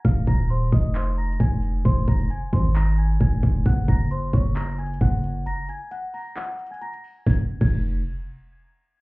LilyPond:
<<
  \new Staff \with { instrumentName = "Celesta" } { \time 4/4 \key f \phrygian \tempo 4 = 133 <f'' f'''>8 <bes'' bes'''>8 <c'' c'''>8 <ees'' ees'''>8 <c'' c'''>8 <bes'' bes'''>8 <aes'' aes'''>4 | <c'' c'''>8 <bes'' bes'''>8 <aes'' aes'''>8 <c'' c'''>8 <bes'' bes'''>8 <aes'' aes'''>8 <aes'' aes'''>4 | <ges'' ges'''>8 <bes'' bes'''>8 <c'' c'''>8 <des'' des'''>8 <bes'' bes'''>8 <aes'' aes'''>8 <ges'' ges'''>4 | <bes'' bes'''>8 <aes'' aes'''>8 <ges'' ges'''>8 <bes'' bes'''>8 <ges'' ges'''>8. <aes'' aes'''>16 <bes'' bes'''>8 r8 |
aes'''16 r8 aes'''8 r2 r8. | }
  \new Staff \with { instrumentName = "808-style bass" } { \clef bass \time 4/4 \key f \phrygian f,,8 ees,,4 f,,4. f,,4 | f,,8 f,,8 r8 aes,,4. f,,8 f,,8 | ges,,8 ges,,4 ges,,4. ges,,4 | r1 |
f,,16 r8 f,,4 r2 r16 | }
  \new DrumStaff \with { instrumentName = "Drums" } \drummode { \time 4/4 <hh bd>8 <hh bd>8 hh8 <hh bd>8 \tuplet 3/2 { <hc hh>16 hh16 hh16 hh16 hh16 hh16 } <hh bd>8 hh8 | <hh bd>8 <hh bd>16 hh16 hh8 <hh bd>8 <hc hh>8 hh8 <hh bd>8 <hh bd>8 | <hh bd>8 <hh bd>8 hh8 <hh bd>8 \tuplet 3/2 { <hc hh>16 hh16 hh16 hh16 hh16 hh16 } <hh bd>8 hh8 | hh8 hh8 hh8 hho8 \tuplet 3/2 { <hc hh>16 hh16 hh16 hh16 hh16 hh16 } hh16 hh16 hho8 |
<bd sn>8. <cymc bd>16 r4 r4 r4 | }
>>